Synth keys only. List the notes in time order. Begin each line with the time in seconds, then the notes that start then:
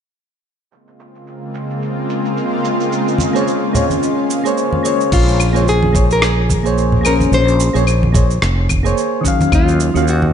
3.33 A#3 G#4 C5 C#5
3.73 A#3 G#4 C5 C#5
4.44 A#3 G#4 C5 C#5
4.83 A#3 G#4 C5 C#5
5.53 A#3 G#4 C5 C#5
5.93 A#3 G#4 C5 C#5
6.63 A#3 G#4 C5 C#5
7.01 A#3 G#4
7.05 C#4 C5
7.73 A#3 G#4 C5 C#5
8.12 A#3 G#4 C5 C#5
8.83 A#3 G#4 C5 C#5
9.21 D#3 C#4
9.26 F#3 F5
9.94 D#3 C#4 F#4 F5